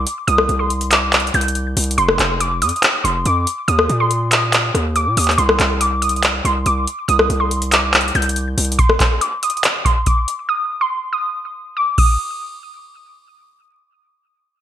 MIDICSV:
0, 0, Header, 1, 4, 480
1, 0, Start_track
1, 0, Key_signature, -3, "minor"
1, 0, Tempo, 425532
1, 314, Time_signature, 4, 2, 24, 8
1, 16482, End_track
2, 0, Start_track
2, 0, Title_t, "Synth pluck"
2, 0, Program_c, 0, 84
2, 309, Note_on_c, 0, 87, 101
2, 649, Note_off_c, 0, 87, 0
2, 669, Note_on_c, 0, 84, 77
2, 765, Note_off_c, 0, 84, 0
2, 1032, Note_on_c, 0, 86, 79
2, 1483, Note_off_c, 0, 86, 0
2, 1517, Note_on_c, 0, 91, 74
2, 2192, Note_off_c, 0, 91, 0
2, 2231, Note_on_c, 0, 84, 107
2, 2683, Note_off_c, 0, 84, 0
2, 2712, Note_on_c, 0, 86, 85
2, 2901, Note_off_c, 0, 86, 0
2, 2954, Note_on_c, 0, 87, 80
2, 3405, Note_off_c, 0, 87, 0
2, 3429, Note_on_c, 0, 84, 80
2, 3619, Note_off_c, 0, 84, 0
2, 3675, Note_on_c, 0, 86, 87
2, 3863, Note_off_c, 0, 86, 0
2, 4149, Note_on_c, 0, 87, 91
2, 4490, Note_off_c, 0, 87, 0
2, 4514, Note_on_c, 0, 84, 89
2, 4608, Note_off_c, 0, 84, 0
2, 4870, Note_on_c, 0, 87, 80
2, 5548, Note_off_c, 0, 87, 0
2, 5592, Note_on_c, 0, 86, 92
2, 5781, Note_off_c, 0, 86, 0
2, 5837, Note_on_c, 0, 87, 76
2, 6024, Note_off_c, 0, 87, 0
2, 6066, Note_on_c, 0, 84, 98
2, 6520, Note_off_c, 0, 84, 0
2, 6549, Note_on_c, 0, 86, 83
2, 6739, Note_off_c, 0, 86, 0
2, 6789, Note_on_c, 0, 87, 76
2, 7242, Note_off_c, 0, 87, 0
2, 7275, Note_on_c, 0, 84, 88
2, 7463, Note_off_c, 0, 84, 0
2, 7515, Note_on_c, 0, 86, 84
2, 7703, Note_off_c, 0, 86, 0
2, 7988, Note_on_c, 0, 87, 101
2, 8329, Note_off_c, 0, 87, 0
2, 8347, Note_on_c, 0, 84, 78
2, 8444, Note_off_c, 0, 84, 0
2, 8712, Note_on_c, 0, 86, 75
2, 9163, Note_off_c, 0, 86, 0
2, 9196, Note_on_c, 0, 91, 75
2, 9871, Note_off_c, 0, 91, 0
2, 9911, Note_on_c, 0, 84, 104
2, 10363, Note_off_c, 0, 84, 0
2, 10391, Note_on_c, 0, 86, 83
2, 10580, Note_off_c, 0, 86, 0
2, 10634, Note_on_c, 0, 87, 82
2, 11085, Note_off_c, 0, 87, 0
2, 11110, Note_on_c, 0, 84, 85
2, 11300, Note_off_c, 0, 84, 0
2, 11356, Note_on_c, 0, 86, 88
2, 11543, Note_off_c, 0, 86, 0
2, 11829, Note_on_c, 0, 87, 92
2, 12170, Note_off_c, 0, 87, 0
2, 12194, Note_on_c, 0, 84, 90
2, 12288, Note_off_c, 0, 84, 0
2, 12550, Note_on_c, 0, 87, 77
2, 13229, Note_off_c, 0, 87, 0
2, 13273, Note_on_c, 0, 86, 93
2, 13461, Note_off_c, 0, 86, 0
2, 13514, Note_on_c, 0, 87, 89
2, 15148, Note_off_c, 0, 87, 0
2, 16482, End_track
3, 0, Start_track
3, 0, Title_t, "808-style bass"
3, 0, Program_c, 1, 38
3, 313, Note_on_c, 1, 36, 108
3, 544, Note_off_c, 1, 36, 0
3, 553, Note_on_c, 1, 36, 100
3, 1474, Note_off_c, 1, 36, 0
3, 1513, Note_on_c, 1, 36, 103
3, 1974, Note_off_c, 1, 36, 0
3, 1993, Note_on_c, 1, 36, 108
3, 2223, Note_off_c, 1, 36, 0
3, 2233, Note_on_c, 1, 29, 114
3, 2464, Note_off_c, 1, 29, 0
3, 2473, Note_on_c, 1, 29, 106
3, 2953, Note_on_c, 1, 41, 104
3, 2970, Note_off_c, 1, 29, 0
3, 3067, Note_off_c, 1, 41, 0
3, 3434, Note_on_c, 1, 29, 102
3, 3664, Note_off_c, 1, 29, 0
3, 3673, Note_on_c, 1, 41, 106
3, 3903, Note_off_c, 1, 41, 0
3, 4152, Note_on_c, 1, 39, 106
3, 4383, Note_off_c, 1, 39, 0
3, 4393, Note_on_c, 1, 46, 104
3, 5314, Note_off_c, 1, 46, 0
3, 5352, Note_on_c, 1, 39, 105
3, 5713, Note_on_c, 1, 46, 101
3, 5730, Note_off_c, 1, 39, 0
3, 5827, Note_off_c, 1, 46, 0
3, 5833, Note_on_c, 1, 39, 105
3, 6063, Note_off_c, 1, 39, 0
3, 6072, Note_on_c, 1, 36, 108
3, 6303, Note_off_c, 1, 36, 0
3, 6313, Note_on_c, 1, 36, 105
3, 7234, Note_off_c, 1, 36, 0
3, 7272, Note_on_c, 1, 36, 104
3, 7503, Note_off_c, 1, 36, 0
3, 7512, Note_on_c, 1, 36, 107
3, 7743, Note_off_c, 1, 36, 0
3, 7992, Note_on_c, 1, 36, 113
3, 8223, Note_off_c, 1, 36, 0
3, 8232, Note_on_c, 1, 36, 105
3, 9154, Note_off_c, 1, 36, 0
3, 9193, Note_on_c, 1, 36, 104
3, 9654, Note_off_c, 1, 36, 0
3, 9673, Note_on_c, 1, 36, 105
3, 9903, Note_off_c, 1, 36, 0
3, 16482, End_track
4, 0, Start_track
4, 0, Title_t, "Drums"
4, 74, Note_on_c, 9, 42, 92
4, 187, Note_off_c, 9, 42, 0
4, 313, Note_on_c, 9, 42, 70
4, 426, Note_off_c, 9, 42, 0
4, 432, Note_on_c, 9, 37, 104
4, 544, Note_off_c, 9, 37, 0
4, 553, Note_on_c, 9, 42, 61
4, 666, Note_off_c, 9, 42, 0
4, 793, Note_on_c, 9, 42, 75
4, 906, Note_off_c, 9, 42, 0
4, 914, Note_on_c, 9, 42, 72
4, 1026, Note_off_c, 9, 42, 0
4, 1029, Note_on_c, 9, 42, 95
4, 1034, Note_on_c, 9, 39, 99
4, 1142, Note_off_c, 9, 42, 0
4, 1146, Note_off_c, 9, 39, 0
4, 1273, Note_on_c, 9, 42, 45
4, 1274, Note_on_c, 9, 39, 111
4, 1353, Note_off_c, 9, 42, 0
4, 1353, Note_on_c, 9, 42, 52
4, 1387, Note_off_c, 9, 39, 0
4, 1433, Note_off_c, 9, 42, 0
4, 1433, Note_on_c, 9, 42, 56
4, 1513, Note_off_c, 9, 42, 0
4, 1513, Note_on_c, 9, 42, 62
4, 1593, Note_off_c, 9, 42, 0
4, 1593, Note_on_c, 9, 42, 65
4, 1672, Note_off_c, 9, 42, 0
4, 1672, Note_on_c, 9, 42, 76
4, 1751, Note_off_c, 9, 42, 0
4, 1751, Note_on_c, 9, 42, 73
4, 1863, Note_off_c, 9, 42, 0
4, 1993, Note_on_c, 9, 42, 52
4, 1994, Note_on_c, 9, 46, 89
4, 2073, Note_off_c, 9, 42, 0
4, 2073, Note_on_c, 9, 42, 69
4, 2107, Note_off_c, 9, 46, 0
4, 2153, Note_off_c, 9, 42, 0
4, 2153, Note_on_c, 9, 42, 83
4, 2233, Note_off_c, 9, 42, 0
4, 2233, Note_on_c, 9, 42, 69
4, 2346, Note_off_c, 9, 42, 0
4, 2352, Note_on_c, 9, 37, 104
4, 2464, Note_off_c, 9, 37, 0
4, 2473, Note_on_c, 9, 39, 84
4, 2473, Note_on_c, 9, 42, 63
4, 2586, Note_off_c, 9, 39, 0
4, 2586, Note_off_c, 9, 42, 0
4, 2712, Note_on_c, 9, 42, 92
4, 2825, Note_off_c, 9, 42, 0
4, 2954, Note_on_c, 9, 42, 91
4, 3034, Note_off_c, 9, 42, 0
4, 3034, Note_on_c, 9, 42, 69
4, 3114, Note_off_c, 9, 42, 0
4, 3114, Note_on_c, 9, 42, 52
4, 3190, Note_off_c, 9, 42, 0
4, 3190, Note_on_c, 9, 42, 75
4, 3195, Note_on_c, 9, 39, 115
4, 3303, Note_off_c, 9, 42, 0
4, 3308, Note_off_c, 9, 39, 0
4, 3439, Note_on_c, 9, 42, 73
4, 3551, Note_off_c, 9, 42, 0
4, 3671, Note_on_c, 9, 42, 75
4, 3784, Note_off_c, 9, 42, 0
4, 3915, Note_on_c, 9, 42, 88
4, 4028, Note_off_c, 9, 42, 0
4, 4153, Note_on_c, 9, 42, 65
4, 4266, Note_off_c, 9, 42, 0
4, 4272, Note_on_c, 9, 37, 104
4, 4385, Note_off_c, 9, 37, 0
4, 4393, Note_on_c, 9, 42, 61
4, 4506, Note_off_c, 9, 42, 0
4, 4632, Note_on_c, 9, 42, 83
4, 4745, Note_off_c, 9, 42, 0
4, 4869, Note_on_c, 9, 42, 96
4, 4873, Note_on_c, 9, 39, 100
4, 4982, Note_off_c, 9, 42, 0
4, 4986, Note_off_c, 9, 39, 0
4, 5109, Note_on_c, 9, 42, 71
4, 5114, Note_on_c, 9, 39, 112
4, 5222, Note_off_c, 9, 42, 0
4, 5227, Note_off_c, 9, 39, 0
4, 5353, Note_on_c, 9, 37, 70
4, 5357, Note_on_c, 9, 42, 80
4, 5466, Note_off_c, 9, 37, 0
4, 5470, Note_off_c, 9, 42, 0
4, 5591, Note_on_c, 9, 42, 75
4, 5704, Note_off_c, 9, 42, 0
4, 5833, Note_on_c, 9, 42, 86
4, 5834, Note_on_c, 9, 46, 90
4, 5913, Note_off_c, 9, 42, 0
4, 5913, Note_on_c, 9, 42, 65
4, 5947, Note_off_c, 9, 46, 0
4, 5954, Note_on_c, 9, 39, 66
4, 5993, Note_off_c, 9, 42, 0
4, 5993, Note_on_c, 9, 42, 49
4, 6067, Note_off_c, 9, 39, 0
4, 6073, Note_off_c, 9, 42, 0
4, 6073, Note_on_c, 9, 42, 69
4, 6185, Note_off_c, 9, 42, 0
4, 6192, Note_on_c, 9, 37, 106
4, 6305, Note_off_c, 9, 37, 0
4, 6313, Note_on_c, 9, 39, 86
4, 6313, Note_on_c, 9, 42, 61
4, 6425, Note_off_c, 9, 42, 0
4, 6426, Note_off_c, 9, 39, 0
4, 6551, Note_on_c, 9, 42, 92
4, 6664, Note_off_c, 9, 42, 0
4, 6792, Note_on_c, 9, 42, 86
4, 6873, Note_off_c, 9, 42, 0
4, 6873, Note_on_c, 9, 42, 70
4, 6952, Note_off_c, 9, 42, 0
4, 6952, Note_on_c, 9, 42, 51
4, 7029, Note_off_c, 9, 42, 0
4, 7029, Note_on_c, 9, 42, 73
4, 7034, Note_on_c, 9, 39, 112
4, 7142, Note_off_c, 9, 42, 0
4, 7147, Note_off_c, 9, 39, 0
4, 7277, Note_on_c, 9, 42, 75
4, 7390, Note_off_c, 9, 42, 0
4, 7511, Note_on_c, 9, 42, 74
4, 7624, Note_off_c, 9, 42, 0
4, 7754, Note_on_c, 9, 42, 90
4, 7867, Note_off_c, 9, 42, 0
4, 7993, Note_on_c, 9, 42, 69
4, 8106, Note_off_c, 9, 42, 0
4, 8112, Note_on_c, 9, 37, 104
4, 8225, Note_off_c, 9, 37, 0
4, 8233, Note_on_c, 9, 42, 62
4, 8346, Note_off_c, 9, 42, 0
4, 8474, Note_on_c, 9, 42, 72
4, 8586, Note_off_c, 9, 42, 0
4, 8593, Note_on_c, 9, 42, 73
4, 8706, Note_off_c, 9, 42, 0
4, 8709, Note_on_c, 9, 42, 94
4, 8713, Note_on_c, 9, 39, 97
4, 8822, Note_off_c, 9, 42, 0
4, 8826, Note_off_c, 9, 39, 0
4, 8953, Note_on_c, 9, 42, 43
4, 8954, Note_on_c, 9, 39, 114
4, 9033, Note_off_c, 9, 42, 0
4, 9033, Note_on_c, 9, 42, 52
4, 9067, Note_off_c, 9, 39, 0
4, 9114, Note_off_c, 9, 42, 0
4, 9114, Note_on_c, 9, 42, 59
4, 9194, Note_off_c, 9, 42, 0
4, 9194, Note_on_c, 9, 42, 60
4, 9274, Note_off_c, 9, 42, 0
4, 9274, Note_on_c, 9, 42, 68
4, 9354, Note_off_c, 9, 42, 0
4, 9354, Note_on_c, 9, 42, 77
4, 9432, Note_off_c, 9, 42, 0
4, 9432, Note_on_c, 9, 42, 74
4, 9545, Note_off_c, 9, 42, 0
4, 9674, Note_on_c, 9, 42, 51
4, 9675, Note_on_c, 9, 46, 90
4, 9754, Note_off_c, 9, 42, 0
4, 9754, Note_on_c, 9, 42, 68
4, 9788, Note_off_c, 9, 46, 0
4, 9834, Note_off_c, 9, 42, 0
4, 9834, Note_on_c, 9, 42, 83
4, 9914, Note_off_c, 9, 42, 0
4, 9914, Note_on_c, 9, 36, 126
4, 9914, Note_on_c, 9, 42, 70
4, 10026, Note_off_c, 9, 36, 0
4, 10026, Note_off_c, 9, 42, 0
4, 10033, Note_on_c, 9, 37, 103
4, 10146, Note_off_c, 9, 37, 0
4, 10154, Note_on_c, 9, 42, 64
4, 10155, Note_on_c, 9, 36, 101
4, 10155, Note_on_c, 9, 39, 86
4, 10267, Note_off_c, 9, 39, 0
4, 10267, Note_off_c, 9, 42, 0
4, 10268, Note_off_c, 9, 36, 0
4, 10393, Note_on_c, 9, 42, 94
4, 10506, Note_off_c, 9, 42, 0
4, 10634, Note_on_c, 9, 42, 89
4, 10714, Note_off_c, 9, 42, 0
4, 10714, Note_on_c, 9, 42, 68
4, 10794, Note_off_c, 9, 42, 0
4, 10794, Note_on_c, 9, 42, 50
4, 10871, Note_off_c, 9, 42, 0
4, 10871, Note_on_c, 9, 42, 73
4, 10876, Note_on_c, 9, 39, 113
4, 10984, Note_off_c, 9, 42, 0
4, 10989, Note_off_c, 9, 39, 0
4, 11114, Note_on_c, 9, 36, 92
4, 11119, Note_on_c, 9, 42, 73
4, 11226, Note_off_c, 9, 36, 0
4, 11231, Note_off_c, 9, 42, 0
4, 11352, Note_on_c, 9, 42, 78
4, 11354, Note_on_c, 9, 36, 92
4, 11464, Note_off_c, 9, 42, 0
4, 11467, Note_off_c, 9, 36, 0
4, 11595, Note_on_c, 9, 42, 90
4, 11708, Note_off_c, 9, 42, 0
4, 13513, Note_on_c, 9, 36, 109
4, 13513, Note_on_c, 9, 49, 90
4, 13626, Note_off_c, 9, 36, 0
4, 13626, Note_off_c, 9, 49, 0
4, 16482, End_track
0, 0, End_of_file